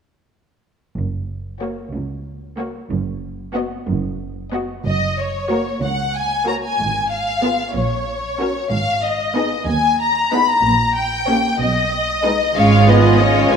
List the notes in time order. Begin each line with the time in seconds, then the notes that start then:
0.96 F#1 F#2
1.61 A#3 F#4 C#5
1.94 C#2
2.58 A#3 F#4 C#5
2.90 F#1 F#2
3.54 B3 F#4 D#5
3.87 F#1 F#2
4.52 B3 F#4 D#5
4.85 F#1 F#2 D#5
5.18 C#5
5.50 A#3 F#4 A#4 C#5
5.82 C#2 F#5
6.15 G#5
6.46 A#3 F#4 A#4 C#5 A#5
6.64 G#5
6.79 G#1 G#2
7.12 F5
7.43 B3 F4 G#4 B4
7.76 A#1 A#2 C#5
8.39 C#4 F#4 A#4
8.71 G#1 G#2 F5
9.03 D#5
9.35 B3 D#4 G#4 B4
9.67 D#2 G#5
10.00 A#5
10.32 B3 D#4 G#4 B4 B5
10.48 A#5
10.64 A#1 A#2
10.95 G5
11.28 A#3 C#4 G4 C#5
11.60 B1 B2 D#5
12.24 G#3 D#4 G#4 B4
12.56 G#1 G#2 G#3 C#4 F4 C#5 F5
12.88 B3 F4 G#4 B4 D#5
13.20 G#3 C#4 F4 C#5
13.51 G#1 G#2 B3 F4 G#4 B4 G#5